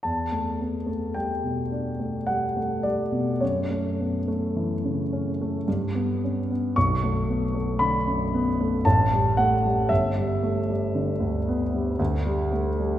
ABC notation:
X:1
M:3/4
L:1/16
Q:1/4=56
K:Edor
V:1 name="Grand piano"
a4 g4 f2 d2 | c8- c2 z2 | c'4 b4 a2 f2 | e8- e2 z2 |]
V:2 name="Grand piano" clef=bass
E,, A, B, A, G, B,, D A, G, A, G, B,, | F,, A, B, A, E, C, C A, G,, B, C B, | B,,, A, B, A, D, F,, B, A, A,,, G, A, G, | G,,, G, A, G, D, D,, B, G, D,, G, A, G, |]